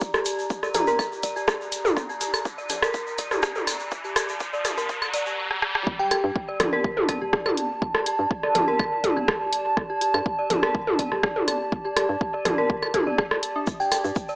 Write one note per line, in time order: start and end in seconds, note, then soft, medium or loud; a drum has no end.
0.00 5.38 G4 medium
0.00 5.38 D5 medium
0.00 5.38 A#5 medium
0.00 kick loud
0.00 riser medium
0.00 shaker medium
0.14 0.16 G4 medium
0.14 cross-stick medium
0.14 shaker soft
0.25 0.28 G4 medium
0.25 closed hi-hat medium
0.25 shaker medium
0.39 shaker soft
0.50 kick loud
0.50 shaker medium
0.63 0.67 D5 medium
0.63 cross-stick soft
0.63 shaker soft
0.74 0.80 G4 medium
0.74 1.43 A#5 medium
0.74 closed hi-hat medium
0.74 high tom medium
0.74 low conga medium
0.74 shaker medium
0.87 0.93 A#4 loud
0.87 shaker soft
0.99 kick loud
0.99 cross-stick soft
0.99 claves medium
0.99 shaker medium
1.12 shaker soft
1.23 1.26 D5 medium
1.23 kick medium
1.23 closed hi-hat medium
1.23 shaker medium
1.36 1.41 G4 medium
1.36 shaker soft
1.48 kick loud
1.48 cross-stick loud
1.48 cross-stick medium
1.48 shaker soft
1.61 shaker soft
1.72 closed hi-hat medium
1.72 shaker medium
1.85 high tom medium
1.85 shaker soft
1.97 kick loud
1.97 cross-stick soft
1.97 shaker soft
2.09 2.11 G4 medium
2.09 shaker soft
2.21 2.23 G4 medium
2.21 closed hi-hat medium
2.21 shaker medium
2.34 cross-stick soft
2.34 claves medium
2.34 shaker soft
2.45 kick loud
2.45 shaker soft
2.58 2.62 D5 medium
2.58 shaker soft
2.69 2.76 G4 medium
2.69 closed hi-hat medium
2.69 low conga medium
2.69 shaker medium
2.82 2.88 A#4 loud
2.82 cross-stick medium
2.82 shaker soft
2.94 kick loud
2.94 shaker medium
3.07 shaker soft
3.18 3.21 D5 medium
3.18 kick medium
3.18 closed hi-hat medium
3.18 shaker medium
3.31 3.37 G4 medium
3.31 cross-stick soft
3.31 high tom medium
3.31 shaker soft
3.43 kick loud
3.43 cross-stick loud
3.43 shaker medium
3.55 high tom medium
3.55 shaker soft
3.67 cross-stick soft
3.67 closed hi-hat medium
3.67 claves medium
3.67 shaker medium
3.80 shaker soft
3.91 kick loud
3.91 shaker soft
4.04 4.07 G4 medium
4.04 shaker soft
4.16 4.18 G4 medium
4.16 cross-stick medium
4.16 closed hi-hat medium
4.16 shaker medium
4.29 shaker soft
4.40 kick loud
4.40 shaker soft
4.53 4.57 D5 medium
4.53 shaker soft
4.65 4.71 G4 medium
4.65 cross-stick soft
4.65 closed hi-hat medium
4.65 high tom medium
4.65 low conga medium
4.65 shaker medium
4.78 4.83 A#4 loud
4.78 shaker soft
4.89 kick loud
4.89 shaker medium
5.02 cross-stick soft
5.02 claves medium
5.02 shaker soft
5.14 5.17 D5 loud
5.14 kick medium
5.14 closed hi-hat medium
5.14 shaker medium
5.26 5.28 G4 medium
5.26 shaker soft
5.51 cross-stick medium
5.62 cross-stick medium
5.75 cross-stick medium
5.87 5.95 G1 medium
5.87 14.36 G4 loud
5.87 kick loud
5.99 6.02 G4 medium
5.99 6.07 G5 medium
6.11 6.14 G4 medium
6.11 6.19 G5 medium
6.11 cross-stick soft
6.11 closed hi-hat medium
6.11 claves medium
6.24 6.31 G2 loud
6.30 14.36 A5 medium
6.36 14.36 D5 loud
6.36 kick loud
6.48 6.52 D5 medium
6.60 6.76 G1 medium
6.60 6.66 G4 medium
6.60 cross-stick medium
6.60 closed hi-hat loud
6.60 high tom medium
6.60 low conga medium
6.73 6.78 A#4 loud
6.84 7.14 G1 loud
6.84 kick loud
6.97 high tom medium
7.09 7.11 D5 medium
7.09 kick medium
7.09 cross-stick soft
7.09 closed hi-hat medium
7.21 7.47 D1 medium
7.21 7.27 G4 medium
7.33 kick loud
7.33 cross-stick loud
7.46 7.75 G1 loud
7.46 cross-stick soft
7.46 high tom medium
7.46 claves medium
7.57 closed hi-hat loud
7.82 7.90 G1 loud
7.82 kick loud
7.95 7.97 G4 medium
7.95 cross-stick medium
8.06 8.09 G4 medium
8.06 closed hi-hat medium
8.19 8.26 G2 loud
8.31 kick loud
8.43 8.47 D5 medium
8.43 cross-stick soft
8.55 8.71 G1 medium
8.55 8.61 G4 medium
8.55 closed hi-hat loud
8.55 high tom medium
8.55 low conga medium
8.68 8.73 A#4 loud
8.79 9.09 G1 loud
8.79 kick loud
8.79 cross-stick soft
8.79 claves medium
9.04 9.06 D5 medium
9.04 kick medium
9.04 closed hi-hat medium
9.04 high tom medium
9.17 9.43 D1 medium
9.17 9.22 G4 medium
9.28 kick loud
9.28 cross-stick loud
9.28 cross-stick medium
9.41 9.70 G1 loud
9.53 closed hi-hat loud
9.77 9.85 G1 loud
9.77 kick loud
9.77 cross-stick soft
9.90 9.92 G4 medium
10.01 10.04 G4 medium
10.01 closed hi-hat loud
10.14 10.21 G2 loud
10.14 cross-stick soft
10.14 claves medium
10.26 kick loud
10.39 10.42 D5 medium
10.50 10.66 G1 medium
10.50 10.56 G4 medium
10.50 closed hi-hat loud
10.50 high tom medium
10.50 low conga medium
10.63 10.68 A#4 loud
10.63 cross-stick medium
10.75 11.04 G1 loud
10.75 kick loud
10.87 high tom medium
10.99 11.01 D5 medium
10.99 kick medium
10.99 closed hi-hat loud
11.12 11.38 D1 medium
11.12 11.17 G4 medium
11.12 cross-stick soft
11.23 kick loud
11.23 cross-stick loud
11.36 11.65 G1 loud
11.36 high tom medium
11.48 cross-stick soft
11.48 closed hi-hat loud
11.48 claves medium
11.72 11.80 G1 loud
11.72 kick loud
11.85 11.87 G4 medium
11.97 11.99 G4 medium
11.97 cross-stick medium
11.97 closed hi-hat loud
12.09 12.17 G2 loud
12.21 kick loud
12.34 12.37 D5 medium
12.45 12.61 G1 medium
12.45 12.51 G4 medium
12.45 cross-stick soft
12.45 closed hi-hat loud
12.45 high tom medium
12.45 low conga medium
12.58 12.63 A#4 loud
12.70 12.99 G1 loud
12.70 kick loud
12.82 cross-stick soft
12.82 claves medium
12.94 12.96 G4 loud
12.94 kick medium
12.94 closed hi-hat medium
12.94 high tom medium
13.07 13.33 D1 medium
13.07 13.10 D5 medium
13.18 kick loud
13.18 cross-stick loud
13.31 13.39 G1 loud
13.31 cross-stick medium
13.43 closed hi-hat medium
13.56 13.59 D4 medium
13.67 13.75 G1 loud
13.67 kick loud
13.67 shaker soft
13.80 13.82 G4 medium
13.80 13.87 G5 medium
13.80 shaker soft
13.92 13.94 G4 medium
13.92 14.00 G5 medium
13.92 cross-stick soft
13.92 closed hi-hat loud
13.92 claves medium
13.92 shaker loud
14.04 14.12 G2 loud
14.04 shaker soft
14.15 kick loud
14.15 shaker medium
14.29 14.32 D5 medium
14.29 shaker soft